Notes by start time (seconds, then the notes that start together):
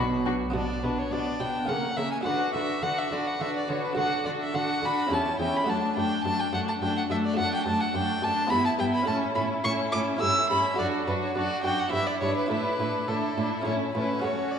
Already playing: B1 B2 B3 D4 F#4 B4 B5
0.25 D4 F#4
0.50 B2 B3 D4 F#4 D5
0.55 B2 F#4
0.82 B2 B3 D4 F#4 B4
0.98 C#5
1.11 B2 B3 D4 F#4 D5
1.40 B2 B3 D4 F#4 G5
1.65 C#3 A#3 C#4 A#4 F#5
1.69 C#3 A#3
1.97 C#3 A#3 C#4 A#4 E5
2.11 G#5
2.21 D4 F#4 B4 F#5
2.25 D3 D4 F#4 B4
2.54 D3 D4 F#4 B4 E5
2.82 D3 D4 F#4 B4 F#5
2.98 E5
3.11 D3 D4 F#4 B4 D5
3.27 F#5
3.40 D3 D4 F#4 B4 E5
3.57 D5
3.68 D3 D4 F#4 B4 C#5
3.84 B4
3.93 D4 F#4 A4 F#5
3.98 D3 D4 A4
4.25 D3 D4 F#4 A4 D5
4.42 E5
4.54 D3 D4 F#4 A4 F#5
4.82 D3 D4 F#4 A4 B5
5.07 E2 C#4 E4 G4
5.11 E2 C#4 E4 G4 A5
5.39 E2 C#4 E4 G4 G5
5.56 B5
5.64 F#2 A3 D4 F#4
5.68 F#2 A3 F#4 A5
5.96 F#2 A3 D4 F#4 G5
6.24 F#2 A3 D4 F#4 A5
6.40 G5
6.53 F#2 A3 D4 F#4 F#5
6.68 A5
6.81 F#2 A3 D4 F#4 G5
6.97 F#5
7.10 F#2 A3 D4 F#4 E5
7.26 D5
7.34 A3 D4 F#4
7.38 F#2 A3 D4 F#4 F#5
7.55 G5
7.66 F#2 A3 D4 F#4 A5
7.80 F#5
7.94 F#2 A3 D4 F#4 G5
8.22 F#2 A3 D4 F#4 A5
8.47 B3 E4 B5
8.51 G2 B3 E4
8.66 A5
8.79 G2 B3 E4 G5
8.94 B5
9.02 C#4 E4 A4
9.07 A2 C#4 E4 A4 A5
9.35 A2 C#4 E4 A4 B5
9.64 A2 C#4 E4 A4 C#6
9.92 A2 C#4 E4 A4 D6
10.17 C#4 E4 A4 E6
10.21 G2 C#4 E4 A4
10.50 G2 C#4 E4 A4 B5
10.74 D4 F#4 A4
10.79 F#2 D4 F#4 D5
11.06 F#2 D4 F#4 A4 B4
11.23 C#5
11.35 F#2 D4 F#4 A4 D5
11.64 F#2 D4 F#4 A4 G5
11.79 F#5
11.88 D4 E4 B4 E5
11.93 G2 D4 E4 B4
12.07 D5
12.20 G2 D4 E4 B4 C#5
12.37 B4
12.47 A2 D4 E4 A4
12.51 A2 D4 E4 B4
12.79 A2 D4 E4 A4
13.07 A2 D4 E4 A4
13.37 A2 D4 E4 A4
13.62 C#4 E4 A4 C#5
13.66 A2 C#4 E4 A4
13.94 A2 C#4 E4 A4 B4
14.20 C#4 F#4 A4
14.24 F#2 C#4 F#4 A4 C#5
14.51 D5